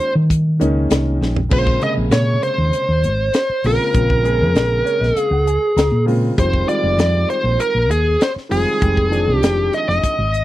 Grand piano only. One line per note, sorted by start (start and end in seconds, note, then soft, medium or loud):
0.60 1.35 D#3 medium
0.60 1.36 G#3 medium
0.60 1.36 A#3 medium
0.60 1.36 C#4 medium
0.60 1.36 D#4 medium
1.49 1.75 C#3 medium
1.49 1.76 G#3 medium
1.49 1.76 A#3 medium
1.49 1.76 C4 medium
1.49 1.76 F4 medium
1.80 2.82 C3 medium
1.80 2.81 C#3 medium
1.80 2.82 G#3 medium
1.80 2.82 A#3 medium
1.80 2.82 G#4 medium
3.64 3.89 C#3 medium
3.64 3.90 G#3 medium
3.64 3.90 A#3 medium
3.64 3.90 C4 medium
3.64 3.90 F4 medium
3.94 4.19 C#3 medium
3.94 4.19 G#3 medium
3.94 4.20 A#3 medium
3.94 4.20 C4 medium
3.94 4.20 F4 medium
4.23 5.25 C#3 medium
4.23 5.25 G#3 medium
4.23 5.25 A#3 medium
4.23 5.26 C4 medium
4.23 5.26 G#4 medium
4.85 5.00 C#5 medium
5.01 5.15 D#5 medium
5.16 5.31 F5 medium
5.32 5.46 F#5 medium
5.47 5.75 G#5 medium
5.77 6.34 A#5 medium
6.06 6.32 C#3 medium
6.06 6.32 G#3 medium
6.06 6.32 A#3 medium
6.06 6.33 C4 medium
6.06 6.33 F4 medium
6.37 6.63 D#3 medium
6.37 6.63 G3 medium
6.37 6.63 G#3 medium
6.37 6.63 C4 medium
6.37 6.64 F4 medium
6.67 7.68 D#3 medium
6.67 7.69 G3 medium
6.67 7.69 G#3 medium
6.67 7.69 C4 medium
6.67 7.69 F4 medium
8.49 8.75 D#3 medium
8.49 8.76 G3 medium
8.49 8.76 G#3 medium
8.49 8.76 C4 medium
8.49 8.76 F4 medium
8.80 9.06 D#3 medium
8.80 9.06 G3 medium
8.80 9.06 G#3 medium
8.80 9.07 C4 medium
8.80 9.07 G4 medium
9.10 10.12 D#3 medium
9.10 10.12 F3 medium
9.10 10.12 G#3 medium
9.10 10.13 C4 medium
9.10 10.13 D4 medium